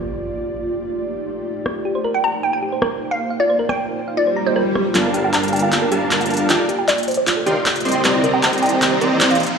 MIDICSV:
0, 0, Header, 1, 10, 480
1, 0, Start_track
1, 0, Tempo, 387097
1, 376, Time_signature, 4, 2, 24, 8
1, 11883, End_track
2, 0, Start_track
2, 0, Title_t, "Synth pluck"
2, 0, Program_c, 0, 84
2, 2659, Note_on_c, 0, 79, 90
2, 2753, Note_off_c, 0, 79, 0
2, 2777, Note_on_c, 0, 82, 85
2, 2888, Note_off_c, 0, 82, 0
2, 3017, Note_on_c, 0, 79, 83
2, 3095, Note_off_c, 0, 79, 0
2, 3141, Note_on_c, 0, 79, 74
2, 3215, Note_off_c, 0, 79, 0
2, 3859, Note_on_c, 0, 77, 89
2, 3953, Note_off_c, 0, 77, 0
2, 4214, Note_on_c, 0, 74, 87
2, 4327, Note_off_c, 0, 74, 0
2, 4579, Note_on_c, 0, 79, 88
2, 4687, Note_off_c, 0, 79, 0
2, 5174, Note_on_c, 0, 74, 89
2, 5287, Note_off_c, 0, 74, 0
2, 5537, Note_on_c, 0, 72, 83
2, 5613, Note_off_c, 0, 72, 0
2, 5656, Note_on_c, 0, 72, 71
2, 5734, Note_off_c, 0, 72, 0
2, 6500, Note_on_c, 0, 79, 88
2, 6593, Note_off_c, 0, 79, 0
2, 6614, Note_on_c, 0, 82, 89
2, 6727, Note_off_c, 0, 82, 0
2, 6856, Note_on_c, 0, 79, 85
2, 6934, Note_off_c, 0, 79, 0
2, 6975, Note_on_c, 0, 79, 75
2, 7052, Note_off_c, 0, 79, 0
2, 7699, Note_on_c, 0, 77, 86
2, 7793, Note_off_c, 0, 77, 0
2, 7817, Note_on_c, 0, 77, 88
2, 7928, Note_off_c, 0, 77, 0
2, 8415, Note_on_c, 0, 79, 85
2, 8511, Note_off_c, 0, 79, 0
2, 8531, Note_on_c, 0, 74, 86
2, 8646, Note_off_c, 0, 74, 0
2, 8775, Note_on_c, 0, 72, 83
2, 8853, Note_off_c, 0, 72, 0
2, 8895, Note_on_c, 0, 72, 75
2, 8972, Note_off_c, 0, 72, 0
2, 10336, Note_on_c, 0, 79, 89
2, 10431, Note_off_c, 0, 79, 0
2, 10452, Note_on_c, 0, 82, 93
2, 10566, Note_off_c, 0, 82, 0
2, 10692, Note_on_c, 0, 79, 87
2, 10772, Note_off_c, 0, 79, 0
2, 10816, Note_on_c, 0, 79, 78
2, 10893, Note_off_c, 0, 79, 0
2, 11536, Note_on_c, 0, 77, 90
2, 11631, Note_off_c, 0, 77, 0
2, 11883, End_track
3, 0, Start_track
3, 0, Title_t, "Supersaw synth"
3, 0, Program_c, 1, 81
3, 6134, Note_on_c, 1, 55, 80
3, 6134, Note_on_c, 1, 62, 71
3, 6135, Note_on_c, 1, 70, 68
3, 6135, Note_on_c, 1, 77, 70
3, 6135, Note_on_c, 1, 81, 87
3, 7307, Note_off_c, 1, 55, 0
3, 7307, Note_off_c, 1, 62, 0
3, 7307, Note_off_c, 1, 70, 0
3, 7307, Note_off_c, 1, 77, 0
3, 7307, Note_off_c, 1, 81, 0
3, 7335, Note_on_c, 1, 70, 85
3, 7335, Note_on_c, 1, 77, 88
3, 7336, Note_on_c, 1, 55, 92
3, 7336, Note_on_c, 1, 62, 81
3, 7337, Note_on_c, 1, 81, 101
3, 8027, Note_off_c, 1, 55, 0
3, 8027, Note_off_c, 1, 70, 0
3, 8027, Note_off_c, 1, 77, 0
3, 8028, Note_off_c, 1, 62, 0
3, 8028, Note_off_c, 1, 81, 0
3, 8056, Note_on_c, 1, 70, 68
3, 8057, Note_on_c, 1, 63, 75
3, 8057, Note_on_c, 1, 74, 66
3, 8057, Note_on_c, 1, 77, 67
3, 8057, Note_on_c, 1, 79, 69
3, 8057, Note_on_c, 1, 81, 80
3, 8181, Note_off_c, 1, 63, 0
3, 8181, Note_off_c, 1, 70, 0
3, 8181, Note_off_c, 1, 74, 0
3, 8181, Note_off_c, 1, 77, 0
3, 8181, Note_off_c, 1, 79, 0
3, 8181, Note_off_c, 1, 81, 0
3, 9254, Note_on_c, 1, 63, 95
3, 9254, Note_on_c, 1, 74, 91
3, 9254, Note_on_c, 1, 77, 86
3, 9254, Note_on_c, 1, 79, 86
3, 9254, Note_on_c, 1, 84, 107
3, 9255, Note_on_c, 1, 70, 91
3, 9380, Note_off_c, 1, 63, 0
3, 9380, Note_off_c, 1, 74, 0
3, 9380, Note_off_c, 1, 77, 0
3, 9380, Note_off_c, 1, 79, 0
3, 9380, Note_off_c, 1, 84, 0
3, 9381, Note_off_c, 1, 70, 0
3, 9734, Note_on_c, 1, 74, 82
3, 9735, Note_on_c, 1, 60, 91
3, 9735, Note_on_c, 1, 72, 79
3, 9735, Note_on_c, 1, 75, 82
3, 9735, Note_on_c, 1, 84, 101
3, 9947, Note_off_c, 1, 60, 0
3, 9947, Note_off_c, 1, 72, 0
3, 9947, Note_off_c, 1, 74, 0
3, 9947, Note_off_c, 1, 75, 0
3, 9947, Note_off_c, 1, 84, 0
3, 9973, Note_on_c, 1, 72, 68
3, 9974, Note_on_c, 1, 60, 75
3, 9974, Note_on_c, 1, 74, 72
3, 9974, Note_on_c, 1, 75, 71
3, 9974, Note_on_c, 1, 82, 83
3, 11146, Note_off_c, 1, 60, 0
3, 11146, Note_off_c, 1, 72, 0
3, 11146, Note_off_c, 1, 74, 0
3, 11146, Note_off_c, 1, 75, 0
3, 11147, Note_off_c, 1, 82, 0
3, 11175, Note_on_c, 1, 60, 93
3, 11175, Note_on_c, 1, 74, 81
3, 11176, Note_on_c, 1, 82, 105
3, 11177, Note_on_c, 1, 72, 85
3, 11177, Note_on_c, 1, 75, 86
3, 11641, Note_off_c, 1, 60, 0
3, 11641, Note_off_c, 1, 74, 0
3, 11642, Note_off_c, 1, 72, 0
3, 11642, Note_off_c, 1, 75, 0
3, 11642, Note_off_c, 1, 82, 0
3, 11883, End_track
4, 0, Start_track
4, 0, Title_t, "Synth arpeggio sound"
4, 0, Program_c, 2, 84
4, 2296, Note_on_c, 2, 67, 77
4, 2340, Note_off_c, 2, 67, 0
4, 2419, Note_on_c, 2, 72, 77
4, 2489, Note_off_c, 2, 72, 0
4, 2535, Note_on_c, 2, 70, 102
4, 2579, Note_off_c, 2, 70, 0
4, 3139, Note_on_c, 2, 79, 69
4, 3244, Note_off_c, 2, 79, 0
4, 3256, Note_on_c, 2, 67, 80
4, 3300, Note_off_c, 2, 67, 0
4, 3378, Note_on_c, 2, 72, 70
4, 3448, Note_off_c, 2, 72, 0
4, 3496, Note_on_c, 2, 70, 100
4, 3539, Note_off_c, 2, 70, 0
4, 4097, Note_on_c, 2, 77, 73
4, 4203, Note_off_c, 2, 77, 0
4, 4215, Note_on_c, 2, 65, 78
4, 4259, Note_off_c, 2, 65, 0
4, 4336, Note_on_c, 2, 72, 77
4, 4407, Note_off_c, 2, 72, 0
4, 4454, Note_on_c, 2, 70, 97
4, 4499, Note_off_c, 2, 70, 0
4, 5056, Note_on_c, 2, 77, 72
4, 5163, Note_off_c, 2, 77, 0
4, 5173, Note_on_c, 2, 65, 78
4, 5218, Note_off_c, 2, 65, 0
4, 5295, Note_on_c, 2, 72, 67
4, 5367, Note_off_c, 2, 72, 0
4, 5412, Note_on_c, 2, 82, 98
4, 5523, Note_off_c, 2, 82, 0
4, 5536, Note_on_c, 2, 75, 74
4, 5607, Note_off_c, 2, 75, 0
4, 5653, Note_on_c, 2, 70, 106
4, 5727, Note_off_c, 2, 70, 0
4, 5895, Note_on_c, 2, 72, 74
4, 5968, Note_off_c, 2, 72, 0
4, 6133, Note_on_c, 2, 65, 78
4, 6178, Note_off_c, 2, 65, 0
4, 6256, Note_on_c, 2, 70, 79
4, 6327, Note_off_c, 2, 70, 0
4, 6375, Note_on_c, 2, 67, 102
4, 6419, Note_off_c, 2, 67, 0
4, 6978, Note_on_c, 2, 77, 71
4, 7083, Note_off_c, 2, 77, 0
4, 7096, Note_on_c, 2, 65, 78
4, 7139, Note_off_c, 2, 65, 0
4, 7218, Note_on_c, 2, 70, 75
4, 7288, Note_off_c, 2, 70, 0
4, 7336, Note_on_c, 2, 67, 101
4, 7380, Note_off_c, 2, 67, 0
4, 7938, Note_on_c, 2, 77, 76
4, 8044, Note_off_c, 2, 77, 0
4, 8054, Note_on_c, 2, 65, 80
4, 8099, Note_off_c, 2, 65, 0
4, 8178, Note_on_c, 2, 69, 73
4, 8248, Note_off_c, 2, 69, 0
4, 8293, Note_on_c, 2, 67, 96
4, 8338, Note_off_c, 2, 67, 0
4, 8895, Note_on_c, 2, 74, 69
4, 9002, Note_off_c, 2, 74, 0
4, 9012, Note_on_c, 2, 65, 79
4, 9058, Note_off_c, 2, 65, 0
4, 9135, Note_on_c, 2, 69, 70
4, 9207, Note_off_c, 2, 69, 0
4, 9253, Note_on_c, 2, 67, 104
4, 9298, Note_off_c, 2, 67, 0
4, 9857, Note_on_c, 2, 79, 78
4, 9963, Note_off_c, 2, 79, 0
4, 9974, Note_on_c, 2, 67, 81
4, 10019, Note_off_c, 2, 67, 0
4, 10095, Note_on_c, 2, 72, 79
4, 10167, Note_off_c, 2, 72, 0
4, 10214, Note_on_c, 2, 70, 104
4, 10259, Note_off_c, 2, 70, 0
4, 10817, Note_on_c, 2, 79, 77
4, 10923, Note_off_c, 2, 79, 0
4, 10935, Note_on_c, 2, 67, 75
4, 10979, Note_off_c, 2, 67, 0
4, 11057, Note_on_c, 2, 72, 71
4, 11128, Note_off_c, 2, 72, 0
4, 11175, Note_on_c, 2, 70, 103
4, 11219, Note_off_c, 2, 70, 0
4, 11778, Note_on_c, 2, 77, 75
4, 11883, Note_off_c, 2, 77, 0
4, 11883, End_track
5, 0, Start_track
5, 0, Title_t, "Ambient pad"
5, 0, Program_c, 3, 92
5, 0, Note_on_c, 3, 58, 81
5, 0, Note_on_c, 3, 65, 69
5, 0, Note_on_c, 3, 67, 72
5, 0, Note_on_c, 3, 74, 91
5, 356, Note_off_c, 3, 58, 0
5, 371, Note_on_c, 3, 63, 67
5, 373, Note_on_c, 3, 57, 79
5, 2019, Note_off_c, 3, 65, 0
5, 2019, Note_off_c, 3, 74, 0
5, 2037, Note_off_c, 3, 57, 0
5, 2037, Note_off_c, 3, 63, 0
5, 2053, Note_on_c, 3, 58, 78
5, 2053, Note_on_c, 3, 72, 89
5, 2054, Note_on_c, 3, 63, 75
5, 3925, Note_off_c, 3, 67, 0
5, 3975, Note_on_c, 3, 65, 74
5, 6094, Note_off_c, 3, 58, 0
5, 6094, Note_off_c, 3, 63, 0
5, 6094, Note_off_c, 3, 72, 0
5, 6114, Note_off_c, 3, 65, 0
5, 6134, Note_on_c, 3, 58, 80
5, 6135, Note_on_c, 3, 65, 76
5, 6135, Note_on_c, 3, 74, 89
5, 6136, Note_on_c, 3, 67, 76
5, 8036, Note_off_c, 3, 58, 0
5, 8053, Note_on_c, 3, 57, 83
5, 9699, Note_off_c, 3, 74, 0
5, 9700, Note_off_c, 3, 65, 0
5, 9717, Note_off_c, 3, 57, 0
5, 9737, Note_on_c, 3, 58, 84
5, 9738, Note_on_c, 3, 63, 77
5, 9738, Note_on_c, 3, 72, 95
5, 11606, Note_off_c, 3, 67, 0
5, 11638, Note_off_c, 3, 63, 0
5, 11656, Note_on_c, 3, 63, 75
5, 11656, Note_on_c, 3, 65, 76
5, 11883, Note_off_c, 3, 58, 0
5, 11883, Note_off_c, 3, 63, 0
5, 11883, Note_off_c, 3, 65, 0
5, 11883, Note_off_c, 3, 72, 0
5, 11883, End_track
6, 0, Start_track
6, 0, Title_t, "Detuned saw bass"
6, 0, Program_c, 4, 39
6, 6134, Note_on_c, 4, 31, 91
6, 7311, Note_off_c, 4, 31, 0
6, 7336, Note_on_c, 4, 31, 91
6, 8032, Note_off_c, 4, 31, 0
6, 8057, Note_on_c, 4, 39, 97
6, 8157, Note_off_c, 4, 39, 0
6, 9256, Note_on_c, 4, 39, 92
6, 9357, Note_off_c, 4, 39, 0
6, 9734, Note_on_c, 4, 36, 98
6, 9951, Note_off_c, 4, 36, 0
6, 9974, Note_on_c, 4, 36, 95
6, 11151, Note_off_c, 4, 36, 0
6, 11173, Note_on_c, 4, 36, 98
6, 11617, Note_off_c, 4, 36, 0
6, 11883, End_track
7, 0, Start_track
7, 0, Title_t, "Impact"
7, 0, Program_c, 5, 103
7, 0, Note_on_c, 5, 60, 65
7, 375, Note_off_c, 5, 60, 0
7, 11883, End_track
8, 0, Start_track
8, 0, Title_t, "Riser"
8, 0, Program_c, 6, 103
8, 6134, Note_on_c, 6, 60, 76
8, 11883, Note_off_c, 6, 60, 0
8, 11883, End_track
9, 0, Start_track
9, 0, Title_t, "Swell"
9, 0, Program_c, 7, 103
9, 5174, Note_on_c, 7, 60, 76
9, 6135, Note_off_c, 7, 60, 0
9, 11883, End_track
10, 0, Start_track
10, 0, Title_t, "Drums"
10, 2056, Note_on_c, 9, 37, 57
10, 2180, Note_off_c, 9, 37, 0
10, 3496, Note_on_c, 9, 37, 70
10, 3620, Note_off_c, 9, 37, 0
10, 4577, Note_on_c, 9, 37, 53
10, 4701, Note_off_c, 9, 37, 0
10, 5895, Note_on_c, 9, 37, 53
10, 6019, Note_off_c, 9, 37, 0
10, 6136, Note_on_c, 9, 39, 46
10, 6136, Note_on_c, 9, 42, 80
10, 6260, Note_off_c, 9, 39, 0
10, 6260, Note_off_c, 9, 42, 0
10, 6376, Note_on_c, 9, 42, 66
10, 6500, Note_off_c, 9, 42, 0
10, 6615, Note_on_c, 9, 39, 46
10, 6615, Note_on_c, 9, 42, 76
10, 6738, Note_off_c, 9, 42, 0
10, 6738, Note_on_c, 9, 42, 50
10, 6739, Note_off_c, 9, 39, 0
10, 6796, Note_off_c, 9, 42, 0
10, 6796, Note_on_c, 9, 42, 67
10, 6855, Note_off_c, 9, 42, 0
10, 6855, Note_on_c, 9, 42, 44
10, 6896, Note_off_c, 9, 42, 0
10, 6896, Note_on_c, 9, 42, 65
10, 6936, Note_off_c, 9, 42, 0
10, 6936, Note_on_c, 9, 42, 79
10, 7060, Note_off_c, 9, 42, 0
10, 7097, Note_on_c, 9, 39, 46
10, 7097, Note_on_c, 9, 42, 76
10, 7221, Note_off_c, 9, 39, 0
10, 7221, Note_off_c, 9, 42, 0
10, 7336, Note_on_c, 9, 42, 67
10, 7460, Note_off_c, 9, 42, 0
10, 7577, Note_on_c, 9, 39, 52
10, 7577, Note_on_c, 9, 42, 81
10, 7700, Note_off_c, 9, 42, 0
10, 7700, Note_on_c, 9, 42, 48
10, 7701, Note_off_c, 9, 39, 0
10, 7758, Note_off_c, 9, 42, 0
10, 7758, Note_on_c, 9, 42, 62
10, 7817, Note_off_c, 9, 42, 0
10, 7817, Note_on_c, 9, 42, 48
10, 7856, Note_off_c, 9, 42, 0
10, 7856, Note_on_c, 9, 42, 62
10, 7896, Note_off_c, 9, 42, 0
10, 7896, Note_on_c, 9, 42, 79
10, 8020, Note_off_c, 9, 42, 0
10, 8056, Note_on_c, 9, 39, 54
10, 8056, Note_on_c, 9, 42, 79
10, 8180, Note_off_c, 9, 39, 0
10, 8180, Note_off_c, 9, 42, 0
10, 8296, Note_on_c, 9, 42, 66
10, 8420, Note_off_c, 9, 42, 0
10, 8536, Note_on_c, 9, 39, 49
10, 8536, Note_on_c, 9, 42, 76
10, 8658, Note_off_c, 9, 42, 0
10, 8658, Note_on_c, 9, 42, 51
10, 8660, Note_off_c, 9, 39, 0
10, 8717, Note_off_c, 9, 42, 0
10, 8717, Note_on_c, 9, 42, 67
10, 8777, Note_off_c, 9, 42, 0
10, 8777, Note_on_c, 9, 42, 49
10, 8818, Note_off_c, 9, 42, 0
10, 8818, Note_on_c, 9, 42, 62
10, 8857, Note_off_c, 9, 42, 0
10, 8857, Note_on_c, 9, 42, 76
10, 8981, Note_off_c, 9, 42, 0
10, 9017, Note_on_c, 9, 39, 54
10, 9017, Note_on_c, 9, 42, 77
10, 9141, Note_off_c, 9, 39, 0
10, 9141, Note_off_c, 9, 42, 0
10, 9256, Note_on_c, 9, 42, 64
10, 9380, Note_off_c, 9, 42, 0
10, 9496, Note_on_c, 9, 39, 56
10, 9496, Note_on_c, 9, 42, 79
10, 9619, Note_off_c, 9, 42, 0
10, 9619, Note_on_c, 9, 42, 48
10, 9620, Note_off_c, 9, 39, 0
10, 9678, Note_off_c, 9, 42, 0
10, 9678, Note_on_c, 9, 42, 62
10, 9737, Note_off_c, 9, 42, 0
10, 9737, Note_on_c, 9, 42, 46
10, 9777, Note_off_c, 9, 42, 0
10, 9777, Note_on_c, 9, 42, 64
10, 9816, Note_off_c, 9, 42, 0
10, 9816, Note_on_c, 9, 42, 76
10, 9940, Note_off_c, 9, 42, 0
10, 9976, Note_on_c, 9, 39, 58
10, 9976, Note_on_c, 9, 42, 82
10, 10100, Note_off_c, 9, 39, 0
10, 10100, Note_off_c, 9, 42, 0
10, 10215, Note_on_c, 9, 42, 67
10, 10339, Note_off_c, 9, 42, 0
10, 10455, Note_on_c, 9, 39, 57
10, 10455, Note_on_c, 9, 42, 74
10, 10577, Note_off_c, 9, 42, 0
10, 10577, Note_on_c, 9, 42, 51
10, 10579, Note_off_c, 9, 39, 0
10, 10636, Note_off_c, 9, 42, 0
10, 10636, Note_on_c, 9, 42, 62
10, 10695, Note_off_c, 9, 42, 0
10, 10695, Note_on_c, 9, 42, 48
10, 10735, Note_off_c, 9, 42, 0
10, 10735, Note_on_c, 9, 42, 61
10, 10775, Note_off_c, 9, 42, 0
10, 10775, Note_on_c, 9, 42, 76
10, 10899, Note_off_c, 9, 42, 0
10, 10935, Note_on_c, 9, 39, 56
10, 10935, Note_on_c, 9, 42, 74
10, 11059, Note_off_c, 9, 39, 0
10, 11059, Note_off_c, 9, 42, 0
10, 11176, Note_on_c, 9, 42, 65
10, 11300, Note_off_c, 9, 42, 0
10, 11415, Note_on_c, 9, 39, 64
10, 11415, Note_on_c, 9, 42, 78
10, 11539, Note_off_c, 9, 39, 0
10, 11539, Note_off_c, 9, 42, 0
10, 11539, Note_on_c, 9, 42, 45
10, 11596, Note_off_c, 9, 42, 0
10, 11596, Note_on_c, 9, 42, 62
10, 11656, Note_off_c, 9, 42, 0
10, 11656, Note_on_c, 9, 42, 48
10, 11696, Note_off_c, 9, 42, 0
10, 11696, Note_on_c, 9, 42, 64
10, 11736, Note_off_c, 9, 42, 0
10, 11736, Note_on_c, 9, 42, 77
10, 11860, Note_off_c, 9, 42, 0
10, 11883, End_track
0, 0, End_of_file